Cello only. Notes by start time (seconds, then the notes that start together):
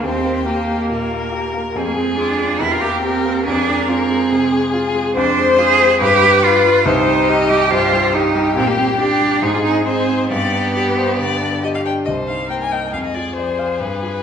0.04 C4
0.47 A#3
1.76 C4
1.87 A#3
1.96 C4
2.18 D4
2.60 E4
2.71 F4
2.81 G4
3.02 C4
3.46 D4
3.88 C4
5.15 D4
5.59 G#4
6.01 G4
6.44 F4
6.85 D#4
7.49 G4
7.71 F4
8.13 D#4
8.56 C4
8.67 A#3
8.78 C4
8.98 D4
9.42 D#4
9.54 F4
9.63 D#4
9.85 C4
10.29 B3
12.06 G3
12.50 A#3
12.93 G#3
13.36 F3
13.79 G3